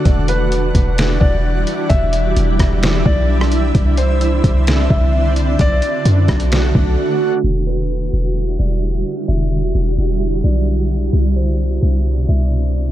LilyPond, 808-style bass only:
\new Staff \with { instrumentName = "808-style bass" } { \clef bass \time 4/4 \key e \minor \tempo 4 = 130 e,,4. e,,4 e,,4 r8 | e,,4 e,,8 e,,4 b,,4. | c,4. c,4 c,4. | b,,8 r8 fis,8 b,,4 b,,8 r4 |
e,,4. e,,4 e,,4 r8 | e,,4 e,,8 e,,4 b,,4. | c,4. c,4 c,4. | }